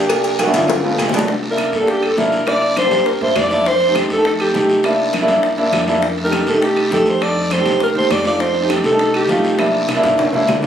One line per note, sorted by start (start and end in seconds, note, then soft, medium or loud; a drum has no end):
0.00 0.48 C2 loud
0.00 0.12 G4 medium
0.09 0.35 A#3 medium
0.09 0.36 D4 medium
0.09 0.36 G4 medium
0.09 0.43 A#4 loud
0.09 cowbell loud
0.09 high conga soft
0.09 low agogo loud
0.09 long guiro medium
0.09 claves medium
0.24 cowbell medium
0.24 high conga soft
0.24 low agogo medium
0.39 0.58 F#4 medium
0.39 cowbell medium
0.39 high conga loud
0.39 high timbale loud
0.39 low agogo loud
0.39 short guiro medium
0.39 claves medium
0.46 0.69 A#3 medium
0.46 0.69 D4 medium
0.46 0.69 E4 medium
0.53 0.95 G1 medium
0.53 0.85 F4 medium
0.53 cowbell medium
0.53 high conga loud
0.53 high timbale loud
0.53 short guiro medium
0.68 cowbell loud
0.68 high bongo loud
0.68 high timbale medium
0.68 low agogo medium
0.68 long guiro medium
0.83 1.04 A3 medium
0.83 1.05 B3 medium
0.83 1.05 F4 medium
0.83 high conga soft
0.83 low timbale loud
0.83 low agogo medium
0.98 1.67 C2 loud
0.98 cowbell medium
0.98 high conga soft
0.98 low timbale loud
0.98 low agogo loud
0.98 short guiro medium
0.98 claves medium
1.09 1.28 A3 medium
1.09 low bongo loud
1.09 short guiro medium
1.14 1.28 B3 medium
1.14 1.29 D4 loud
1.14 cowbell medium
1.14 high conga medium
1.14 low timbale loud
1.19 low bongo loud
1.28 high bongo medium
1.28 high conga soft
1.28 long guiro medium
1.43 high conga soft
1.43 high timbale medium
1.50 1.71 A#3 medium
1.50 1.71 D4 medium
1.50 1.72 E4 medium
1.50 1.77 A#4 medium
1.58 high bongo medium
1.58 high conga medium
1.58 high timbale loud
1.58 short guiro medium
1.58 claves medium
1.72 2.14 G2 medium
1.72 1.91 A4 medium
1.72 high bongo soft
1.72 high conga soft
1.72 short guiro medium
1.79 2.06 A#3 medium
1.79 2.06 D4 medium
1.79 2.07 G4 medium
1.87 2.06 G4 medium
1.87 high bongo medium
1.87 high conga soft
1.87 high timbale medium
1.87 long guiro medium
2.02 2.18 A4 medium
2.02 high bongo soft
2.02 high conga soft
2.02 high timbale loud
2.02 claves medium
2.17 2.86 C2 medium
2.17 2.38 A#3 medium
2.17 2.38 D4 medium
2.17 2.38 E4 medium
2.17 2.49 A#4 medium
2.17 high bongo soft
2.17 low bongo medium
2.17 high conga medium
2.17 low timbale medium
2.17 short guiro medium
2.32 high bongo soft
2.32 high conga soft
2.32 short guiro medium
2.46 2.73 A#3 medium
2.46 2.73 D4 medium
2.46 2.74 E4 medium
2.46 2.77 D5 loud
2.46 high bongo medium
2.46 high conga soft
2.46 high timbale medium
2.46 long guiro medium
2.46 claves medium
2.62 high conga soft
2.62 high timbale medium
2.76 3.08 C5 medium
2.76 high bongo medium
2.76 high conga medium
2.76 high timbale loud
2.76 short guiro medium
2.76 claves medium
2.83 3.10 A#3 medium
2.83 3.10 D4 medium
2.83 3.11 G4 medium
2.91 3.19 G2 medium
2.91 high bongo soft
2.91 high conga loud
2.91 high timbale medium
2.91 short guiro medium
3.06 3.21 A#4 medium
3.06 high bongo medium
3.06 long guiro medium
3.21 3.35 G2 medium
3.21 3.42 A#3 medium
3.21 3.42 D4 medium
3.21 3.42 E4 medium
3.21 3.38 C5 loud
3.21 high bongo soft
3.21 high conga soft
3.21 high timbale medium
3.36 4.05 F2 medium
3.36 3.69 D5 loud
3.36 high bongo soft
3.36 low bongo medium
3.36 high conga soft
3.36 high timbale medium
3.36 low timbale medium
3.36 short guiro medium
3.36 claves medium
3.50 3.66 A#3 medium
3.50 3.66 D4 medium
3.50 3.66 E4 medium
3.50 high bongo soft
3.50 high conga medium
3.50 short guiro medium
3.66 3.96 C5 loud
3.66 high bongo medium
3.66 high conga soft
3.66 long guiro medium
3.81 high conga soft
3.81 high timbale medium
3.87 4.08 A3 medium
3.87 4.09 D#4 medium
3.87 4.09 G4 medium
3.95 high bongo medium
3.95 high conga medium
3.95 high timbale medium
3.95 short guiro medium
3.95 claves medium
4.10 4.51 F2 medium
4.10 4.25 A4 medium
4.10 high bongo soft
4.10 high conga soft
4.10 short guiro medium
4.16 4.43 A3 medium
4.16 4.43 D#4 medium
4.16 4.44 A4 medium
4.25 4.33 A4 medium
4.25 high bongo medium
4.25 high conga soft
4.25 high timbale medium
4.25 long guiro medium
4.39 4.96 G4 medium
4.39 high bongo soft
4.39 high conga soft
4.39 high timbale loud
4.39 claves medium
4.54 5.23 C2 medium
4.54 4.75 A3 medium
4.54 4.76 D#4 medium
4.54 4.76 G4 medium
4.54 high bongo soft
4.54 low bongo medium
4.54 high conga medium
4.54 short guiro medium
4.69 high bongo soft
4.69 short guiro medium
4.83 5.10 A#3 medium
4.83 5.10 D4 medium
4.83 5.11 E4 medium
4.83 high bongo medium
4.83 high conga soft
4.83 high timbale medium
4.83 long guiro medium
4.83 claves medium
4.99 high conga soft
4.99 high timbale medium
5.13 high bongo medium
5.13 high conga medium
5.13 high timbale medium
5.13 short guiro medium
5.13 claves medium
5.21 5.47 A#3 medium
5.21 5.47 D4 medium
5.21 5.48 E4 loud
5.28 5.70 G2 medium
5.28 high bongo soft
5.28 high conga loud
5.28 high timbale medium
5.28 short guiro medium
5.43 high bongo medium
5.43 long guiro medium
5.57 5.79 A#3 medium
5.57 5.79 D4 medium
5.57 5.79 E4 medium
5.57 high bongo soft
5.57 high conga soft
5.57 high timbale medium
5.72 6.41 F2 medium
5.72 high bongo soft
5.72 low bongo medium
5.72 high timbale medium
5.72 low timbale medium
5.72 short guiro medium
5.72 claves medium
5.87 6.02 A#3 medium
5.87 6.03 D4 medium
5.87 6.03 E4 loud
5.87 high bongo soft
5.87 high conga medium
5.87 short guiro medium
6.02 high bongo medium
6.02 high conga soft
6.02 long guiro medium
6.18 high conga soft
6.18 high timbale medium
6.24 6.45 A3 medium
6.24 6.45 D#4 medium
6.24 6.46 G4 medium
6.24 6.50 A#4 medium
6.32 high bongo medium
6.32 high conga medium
6.32 high timbale medium
6.32 short guiro medium
6.32 claves medium
6.46 6.88 C2 medium
6.46 6.63 A4 medium
6.46 high bongo soft
6.46 high conga soft
6.46 short guiro medium
6.54 6.80 A3 medium
6.54 6.81 D#4 medium
6.54 6.81 G4 medium
6.62 6.90 G4 medium
6.62 high bongo medium
6.62 high conga soft
6.62 high timbale medium
6.62 long guiro medium
6.77 high bongo soft
6.77 high conga soft
6.77 high timbale loud
6.77 claves medium
6.90 7.60 F2 loud
6.90 7.12 A3 medium
6.90 7.12 D#4 medium
6.90 7.13 G4 medium
6.90 7.11 A4 medium
6.90 high bongo soft
6.90 low bongo medium
6.90 high conga medium
6.90 short guiro medium
7.06 7.24 C5 medium
7.06 high bongo soft
7.06 short guiro medium
7.20 7.47 A3 medium
7.20 7.47 D#4 medium
7.20 7.47 A4 medium
7.20 7.54 D5 loud
7.20 high bongo medium
7.20 high conga soft
7.20 high timbale medium
7.20 long guiro medium
7.20 claves medium
7.36 high timbale medium
7.51 7.82 C5 medium
7.51 high bongo medium
7.51 high conga medium
7.51 high timbale medium
7.51 short guiro medium
7.51 claves medium
7.57 7.84 A3 medium
7.57 7.84 D#4 medium
7.57 7.85 G4 medium
7.65 7.94 C2 medium
7.65 high bongo soft
7.65 high conga loud
7.65 high timbale medium
7.65 short guiro medium
7.80 7.89 A#4 medium
7.80 high bongo medium
7.80 high conga soft
7.80 long guiro medium
7.95 8.09 D#2 medium
7.95 8.16 A3 medium
7.95 8.16 D#4 medium
7.95 8.17 G4 medium
7.95 8.14 C5 loud
7.95 high bongo soft
7.95 high conga soft
7.95 high timbale medium
8.10 8.79 F2 loud
8.10 8.26 D5 loud
8.10 high bongo soft
8.10 low bongo medium
8.10 high conga soft
8.10 high timbale medium
8.10 low timbale medium
8.10 short guiro medium
8.10 claves medium
8.24 8.51 A3 medium
8.24 8.51 D#4 medium
8.24 8.52 F4 medium
8.24 8.43 D5 medium
8.24 high bongo soft
8.24 short guiro medium
8.39 8.70 C5 loud
8.39 high bongo medium
8.39 high conga soft
8.39 long guiro medium
8.55 high conga soft
8.55 high timbale medium
8.62 8.83 A3 medium
8.62 8.83 D#4 medium
8.62 8.84 G4 medium
8.69 high bongo medium
8.69 high conga medium
8.69 high timbale loud
8.69 short guiro medium
8.69 claves medium
8.84 9.26 C2 medium
8.84 8.99 A4 medium
8.84 high bongo soft
8.84 high conga soft
8.84 short guiro medium
8.92 9.18 A3 medium
8.92 9.18 D#4 medium
8.92 9.19 A4 medium
8.99 9.14 A4 medium
8.99 high bongo medium
8.99 high conga soft
8.99 high timbale medium
8.99 long guiro medium
9.14 9.71 G4 medium
9.14 high bongo soft
9.14 high conga soft
9.14 high timbale loud
9.14 claves medium
9.28 9.98 C2 medium
9.28 9.50 A3 medium
9.28 9.50 D#4 medium
9.28 9.51 F4 medium
9.28 high bongo soft
9.28 low bongo medium
9.28 high conga medium
9.28 short guiro medium
9.44 high bongo soft
9.44 short guiro medium
9.58 9.85 A#3 medium
9.58 9.85 D4 medium
9.58 9.85 E4 medium
9.58 high bongo medium
9.58 high conga medium
9.58 high timbale medium
9.58 long guiro medium
9.58 claves medium
9.74 high timbale medium
9.88 high bongo medium
9.88 low conga medium
9.88 high timbale loud
9.88 short guiro medium
9.88 claves medium
9.95 10.22 A#3 medium
9.95 10.22 D4 medium
9.95 10.22 E4 loud
10.03 10.45 G2 medium
10.03 high bongo soft
10.03 low conga medium
10.03 high timbale medium
10.03 short guiro medium
10.18 high bongo medium
10.18 low conga medium
10.18 high timbale loud
10.18 long guiro medium
10.33 10.54 A#3 medium
10.33 10.55 D4 medium
10.33 10.55 E4 loud
10.33 high bongo soft
10.33 low conga loud
10.33 low timbale loud
10.48 10.66 D2 medium
10.48 high bongo soft
10.48 low bongo medium
10.48 low conga loud
10.48 low timbale loud
10.48 short guiro medium
10.48 claves medium
10.63 10.66 A#3 medium
10.63 10.66 D4 medium
10.63 low conga loud
10.63 short guiro medium